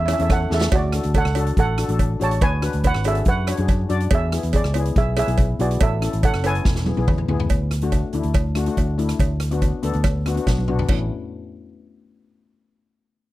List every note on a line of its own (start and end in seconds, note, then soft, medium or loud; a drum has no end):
0.00 0.13 E2 loud
0.06 0.15 C#4 medium
0.06 0.15 E4 medium
0.06 0.16 G#4 medium
0.06 0.12 E5 medium
0.06 cross-stick medium
0.06 closed hi-hat loud
0.06 cowbell medium
0.13 0.20 E5 medium
0.19 0.45 E2 medium
0.19 0.38 C#4 medium
0.19 0.39 E4 medium
0.19 0.39 A4 medium
0.19 0.28 E5 medium
0.19 closed hi-hat medium
0.30 0.50 A4 medium
0.30 0.53 F#5 medium
0.30 kick loud
0.30 cross-stick medium
0.30 closed hi-hat medium
0.30 cowbell medium
0.50 0.68 E2 medium
0.50 0.72 C#4 medium
0.50 0.72 E4 medium
0.50 0.72 G#4 medium
0.50 0.72 A4 medium
0.50 snare medium
0.54 0.75 E5 medium
0.61 snare loud
0.72 0.98 D2 loud
0.72 1.12 F#4 medium
0.72 1.17 D5 loud
0.72 kick loud
0.72 closed hi-hat medium
0.72 cowbell loud
0.92 1.19 D4 medium
0.92 1.19 F#4 medium
0.92 1.20 A4 medium
0.92 cross-stick loud
0.92 closed hi-hat loud
1.03 1.22 D2 medium
1.03 closed hi-hat medium
1.14 1.55 A4 medium
1.14 1.59 F#5 medium
1.14 kick medium
1.14 closed hi-hat medium
1.14 cowbell medium
1.25 1.51 C#2 loud
1.25 cross-stick medium
1.35 1.61 D4 medium
1.35 1.62 F#4 medium
1.35 1.62 A4 medium
1.35 closed hi-hat loud
1.35 cowbell medium
1.47 closed hi-hat medium
1.57 1.83 A1 loud
1.57 2.18 A4 medium
1.57 2.24 F#5 loud
1.57 kick loud
1.57 closed hi-hat medium
1.78 1.84 D4 medium
1.78 1.85 F#4 medium
1.78 1.85 A4 medium
1.78 cross-stick medium
1.78 closed hi-hat medium
1.89 2.14 A1 loud
1.89 2.08 D4 medium
1.89 2.08 F#4 medium
1.89 2.09 A4 medium
1.89 closed hi-hat medium
1.99 kick medium
1.99 closed hi-hat medium
1.99 cowbell medium
2.19 2.38 A1 medium
2.19 2.41 D4 medium
2.19 2.42 F#4 medium
2.19 2.42 G#4 medium
2.19 2.31 C#5 medium
2.19 closed hi-hat medium
2.24 2.32 A5 loud
2.31 closed hi-hat medium
2.41 2.68 D2 loud
2.41 2.81 B4 medium
2.41 2.86 G#5 loud
2.41 kick loud
2.41 closed hi-hat medium
2.41 cowbell medium
2.62 2.88 D4 medium
2.62 2.89 F#4 medium
2.62 2.89 B4 medium
2.62 cross-stick loud
2.62 closed hi-hat medium
2.73 2.91 D2 medium
2.73 closed hi-hat medium
2.84 2.94 B4 medium
2.84 2.96 F#5 loud
2.84 kick medium
2.84 closed hi-hat medium
2.84 cowbell medium
2.94 3.21 G#1 loud
2.94 cross-stick medium
3.04 3.31 D4 medium
3.04 3.31 F#4 medium
3.04 3.26 G#4 medium
3.04 3.32 A4 medium
3.04 3.28 E5 medium
3.04 closed hi-hat medium
3.04 cowbell medium
3.15 closed hi-hat medium
3.25 3.52 F#2 medium
3.25 3.87 B4 medium
3.25 3.87 F#5 loud
3.25 kick loud
3.25 closed hi-hat medium
3.47 3.55 D4 medium
3.47 3.55 F#4 medium
3.47 3.55 C#5 medium
3.47 cross-stick medium
3.47 closed hi-hat loud
3.47 cowbell medium
3.57 3.84 F#2 medium
3.57 3.78 D4 medium
3.57 3.78 F#4 medium
3.57 3.78 G#4 medium
3.57 closed hi-hat medium
3.68 kick medium
3.68 closed hi-hat medium
3.68 cowbell medium
3.89 4.07 F#2 medium
3.89 4.11 D4 medium
3.89 4.11 F#4 medium
3.89 4.11 D5 loud
3.89 closed hi-hat medium
4.00 closed hi-hat medium
4.11 4.37 E2 loud
4.11 4.52 G#4 medium
4.11 kick loud
4.11 closed hi-hat medium
4.11 cowbell loud
4.15 4.57 E5 loud
4.32 4.58 B3 medium
4.32 4.59 E4 medium
4.32 4.59 G#4 medium
4.32 cross-stick loud
4.32 closed hi-hat loud
4.43 4.61 E2 medium
4.43 closed hi-hat medium
4.53 4.94 G#4 medium
4.53 4.99 D5 medium
4.53 kick medium
4.53 closed hi-hat medium
4.53 cowbell medium
4.64 4.90 C#2 loud
4.64 cross-stick medium
4.74 5.00 B3 medium
4.74 5.01 E4 medium
4.74 5.01 G#4 loud
4.74 closed hi-hat medium
4.74 cowbell medium
4.85 closed hi-hat medium
4.96 5.22 B1 loud
4.96 5.07 G#4 medium
4.96 5.07 E5 medium
4.96 kick loud
4.96 closed hi-hat medium
5.16 5.23 B3 medium
5.16 5.24 E4 medium
5.16 5.57 G#4 medium
5.16 5.24 B4 medium
5.16 5.62 E5 loud
5.16 cross-stick medium
5.16 closed hi-hat medium
5.16 cowbell medium
5.27 5.53 B1 loud
5.27 5.47 B3 medium
5.27 5.47 E4 medium
5.27 5.47 G#4 medium
5.27 closed hi-hat medium
5.38 kick loud
5.38 closed hi-hat medium
5.38 cowbell medium
5.59 5.77 B1 loud
5.59 5.81 B3 medium
5.59 5.81 E4 medium
5.59 5.70 F#4 medium
5.59 5.81 G#4 medium
5.59 5.71 D5 medium
5.59 closed hi-hat medium
5.71 closed hi-hat medium
5.81 6.07 A1 loud
5.81 6.21 A4 medium
5.81 6.26 E5 loud
5.81 kick loud
5.81 closed hi-hat medium
5.81 cowbell loud
6.01 6.27 C#4 medium
6.01 6.28 E4 medium
6.01 6.28 A4 medium
6.01 cross-stick loud
6.01 closed hi-hat medium
6.13 6.31 A1 medium
6.13 closed hi-hat medium
6.23 6.44 A4 medium
6.23 6.46 F#5 loud
6.23 kick loud
6.23 closed hi-hat medium
6.23 cowbell medium
6.34 6.60 F#1 medium
6.34 cross-stick medium
6.43 6.65 C#4 medium
6.43 6.65 E4 medium
6.43 6.66 A4 medium
6.43 7.05 B4 medium
6.43 7.05 G#5 medium
6.43 closed hi-hat medium
6.43 cowbell medium
6.55 closed hi-hat medium
6.65 6.92 E1 loud
6.65 kick loud
6.65 snare medium
6.76 snare medium
6.86 6.93 B3 medium
6.86 6.93 E4 medium
6.86 6.94 G#4 medium
6.86 high tom medium
6.97 7.06 B1 loud
6.97 7.16 B3 medium
6.97 7.17 E4 medium
6.97 7.17 G#4 loud
6.97 high tom medium
7.08 7.27 E2 medium
7.08 kick medium
7.08 mid tom loud
7.08 cowbell medium
7.18 mid tom medium
7.28 7.48 D2 medium
7.28 7.50 B3 loud
7.28 7.51 E4 medium
7.28 7.51 G#4 medium
7.28 floor tom loud
7.40 floor tom loud
7.50 8.02 D2 medium
7.50 kick loud
7.50 closed hi-hat medium
7.50 cowbell medium
7.71 cross-stick medium
7.71 closed hi-hat medium
7.81 8.02 A3 medium
7.81 8.02 D4 medium
7.81 8.02 F#4 loud
7.81 closed hi-hat medium
7.92 kick medium
7.92 closed hi-hat medium
7.92 cowbell medium
8.13 8.22 D2 medium
8.13 8.39 A3 medium
8.13 8.40 D4 medium
8.13 8.40 E4 loud
8.13 closed hi-hat medium
8.23 8.68 D2 medium
8.23 closed hi-hat medium
8.34 kick loud
8.34 cross-stick medium
8.34 closed hi-hat medium
8.34 cowbell medium
8.55 8.62 A3 medium
8.55 8.63 D4 medium
8.55 8.63 F#4 loud
8.55 cross-stick medium
8.55 closed hi-hat medium
8.66 8.86 A3 medium
8.66 8.87 D4 medium
8.66 8.87 F#4 medium
8.66 closed hi-hat medium
8.77 9.12 D2 medium
8.77 kick medium
8.77 closed hi-hat medium
8.77 cowbell medium
8.98 9.20 A3 medium
8.98 9.20 D4 medium
8.98 9.20 E4 loud
8.98 closed hi-hat medium
9.09 cross-stick medium
9.09 closed hi-hat medium
9.19 9.72 D2 medium
9.19 kick loud
9.19 closed hi-hat medium
9.19 cowbell medium
9.40 cross-stick loud
9.40 closed hi-hat medium
9.51 9.71 B3 medium
9.51 9.71 D4 medium
9.51 9.71 F#4 loud
9.51 closed hi-hat medium
9.62 kick medium
9.62 closed hi-hat medium
9.62 cowbell medium
9.83 9.92 D2 medium
9.83 10.09 B3 medium
9.83 10.09 D4 medium
9.83 10.09 A4 loud
9.83 closed hi-hat medium
9.93 10.38 D2 medium
9.93 closed hi-hat medium
10.04 kick loud
10.04 cross-stick medium
10.04 closed hi-hat medium
10.04 cowbell medium
10.26 10.32 B3 medium
10.26 10.33 D4 medium
10.26 10.33 F#4 loud
10.26 cross-stick medium
10.26 closed hi-hat medium
10.36 10.55 B3 medium
10.36 10.56 D4 medium
10.36 10.56 F#4 medium
10.36 closed hi-hat medium
10.47 10.81 B1 medium
10.47 kick medium
10.47 snare medium
10.47 cowbell medium
10.58 high tom medium
10.68 10.89 B3 medium
10.68 10.90 D4 medium
10.68 10.90 F#4 loud
10.68 mid tom medium
10.79 floor tom loud
10.88 11.09 A1 medium
10.88 11.09 A3 medium
10.88 11.09 C#4 medium
10.88 11.09 E4 medium
10.88 kick loud
10.88 crash medium
10.88 cowbell medium